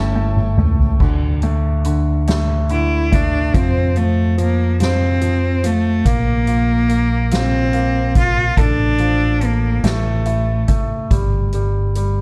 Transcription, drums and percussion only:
0.37 mid tom medium
0.58 mid tom medium
0.79 floor tom medium
1.00 kick medium
1.00 crash medium
1.42 closed hi-hat soft
1.84 closed hi-hat medium
2.27 snare medium
2.27 closed hi-hat medium
2.69 closed hi-hat soft
3.12 kick medium
3.12 closed hi-hat medium
3.54 kick medium
3.54 closed hi-hat medium
3.96 closed hi-hat soft
4.38 closed hi-hat medium
4.80 snare medium
4.80 closed hi-hat medium
5.21 closed hi-hat medium
5.64 closed hi-hat medium
6.05 kick medium
6.05 closed hi-hat medium
6.47 closed hi-hat soft
6.89 closed hi-hat medium
7.31 snare loud
7.31 closed hi-hat medium
7.73 closed hi-hat medium
8.15 kick medium
8.15 closed hi-hat medium
8.57 kick medium
8.57 closed hi-hat medium
8.98 closed hi-hat soft
9.41 closed hi-hat medium
9.84 snare loud
9.84 closed hi-hat medium
10.26 closed hi-hat medium
10.68 kick medium
10.68 closed hi-hat medium
11.11 kick medium
11.11 closed hi-hat medium
11.53 closed hi-hat soft
11.95 closed hi-hat medium

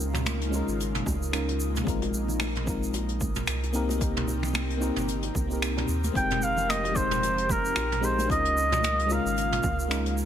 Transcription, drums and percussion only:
0.00 shaker medium
0.14 finger snap soft
0.14 mid tom medium
0.14 high bongo medium
0.14 low conga medium
0.14 shaker medium
0.26 finger snap loud
0.26 closed hi-hat medium
0.26 high conga loud
0.26 shaker medium
0.41 closed hi-hat medium
0.53 high bongo medium
0.53 shaker medium
0.68 shaker medium
0.80 closed hi-hat medium
0.80 shaker medium
0.95 closed hi-hat medium
0.95 mid tom medium
1.06 kick loud
1.06 high bongo medium
1.06 high conga medium
1.06 low conga medium
1.06 shaker medium
1.23 shaker medium
1.33 finger snap loud
1.33 closed hi-hat medium
1.33 shaker soft
1.48 closed hi-hat medium
1.48 high bongo medium
1.60 shaker loud
1.75 closed hi-hat soft
1.75 mid tom medium
1.75 high conga medium
1.75 shaker medium
1.87 kick loud
1.87 closed hi-hat medium
1.87 shaker soft
2.02 closed hi-hat medium
2.02 high bongo medium
2.14 shaker loud
2.28 low conga medium
2.28 shaker medium
2.40 finger snap loud
2.40 closed hi-hat medium
2.40 high bongo medium
2.40 high conga medium
2.40 shaker medium
2.55 closed hi-hat medium
2.55 mid tom medium
2.67 kick loud
2.67 shaker medium
2.83 shaker medium
2.94 closed hi-hat medium
2.94 high bongo medium
2.94 shaker soft
3.09 closed hi-hat medium
3.21 kick loud
3.21 high conga medium
3.21 low conga medium
3.21 shaker medium
3.35 mid tom medium
3.35 high bongo medium
3.35 shaker medium
3.47 finger snap loud
3.47 closed hi-hat medium
3.47 shaker medium
3.63 closed hi-hat medium
3.74 shaker medium
3.89 closed hi-hat soft
3.89 high bongo medium
3.89 high conga medium
3.89 shaker medium
4.01 kick loud
4.01 closed hi-hat medium
4.01 shaker medium
4.16 closed hi-hat medium
4.16 mid tom medium
4.28 high bongo medium
4.28 shaker medium
4.43 finger snap soft
4.43 low conga medium
4.43 shaker medium
4.53 finger snap loud
4.53 closed hi-hat medium
4.53 high conga medium
4.53 shaker soft
4.70 closed hi-hat medium
4.82 high bongo medium
4.82 shaker medium
4.96 mid tom medium
4.96 shaker medium
5.08 closed hi-hat medium
5.08 shaker soft
5.22 closed hi-hat medium
5.22 high bongo soft
5.35 kick loud
5.35 high conga medium
5.35 low conga medium
5.35 shaker medium
5.51 shaker medium
5.62 finger snap loud
5.62 closed hi-hat medium
5.62 shaker medium
5.77 closed hi-hat medium
5.77 mid tom medium
5.77 high bongo medium
5.88 shaker medium
6.04 closed hi-hat medium
6.04 high conga medium
6.04 shaker medium
6.15 kick loud
6.15 closed hi-hat medium
6.15 shaker soft
6.30 closed hi-hat medium
6.30 mid tom medium
6.30 high bongo soft
6.42 shaker medium
6.57 low conga medium
6.57 shaker medium
6.69 finger snap medium
6.69 closed hi-hat medium
6.69 high conga medium
6.69 shaker medium
6.84 closed hi-hat medium
6.84 high bongo medium
6.96 kick loud
6.96 shaker medium
7.11 mid tom medium
7.11 shaker medium
7.23 closed hi-hat medium
7.23 high bongo medium
7.23 shaker medium
7.38 closed hi-hat medium
7.49 kick loud
7.49 high conga medium
7.49 low conga medium
7.49 shaker loud
7.65 shaker medium
7.76 finger snap loud
7.76 closed hi-hat medium
7.76 high bongo medium
7.76 shaker medium
7.92 closed hi-hat medium
7.92 mid tom medium
8.04 shaker medium
8.18 closed hi-hat soft
8.18 high bongo medium
8.18 high conga medium
8.18 shaker medium
8.30 kick loud
8.30 closed hi-hat medium
8.30 shaker soft
8.45 closed hi-hat medium
8.57 shaker medium
8.72 finger snap soft
8.72 mid tom medium
8.72 high bongo medium
8.72 low conga medium
8.72 shaker medium
8.83 finger snap loud
8.83 closed hi-hat medium
8.83 high conga medium
8.83 shaker soft
8.99 closed hi-hat medium
9.10 high bongo medium
9.10 shaker medium
9.27 shaker medium
9.37 closed hi-hat medium
9.37 shaker medium
9.52 closed hi-hat medium
9.52 mid tom medium
9.63 kick loud
9.63 high bongo medium
9.63 high conga medium
9.63 low conga medium
9.63 shaker medium
9.80 shaker medium
9.91 finger snap loud
9.91 closed hi-hat medium
9.91 shaker medium
10.06 closed hi-hat medium
10.06 high bongo medium
10.18 shaker medium

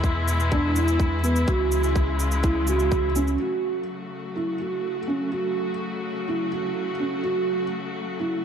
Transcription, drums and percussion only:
0.04 kick medium
0.04 shaker soft
0.28 shaker medium
0.40 shaker soft
0.52 kick medium
0.52 shaker soft
0.76 shaker medium
0.88 shaker soft
1.00 kick medium
1.00 shaker soft
1.24 shaker medium
1.36 shaker soft
1.48 kick loud
1.48 shaker soft
1.72 shaker medium
1.84 shaker soft
1.96 kick medium
1.96 shaker soft
2.19 shaker medium
2.31 shaker soft
2.43 kick medium
2.43 shaker soft
2.67 shaker medium
2.79 shaker soft
2.92 kick medium
2.92 shaker soft
3.16 shaker medium
3.28 shaker soft

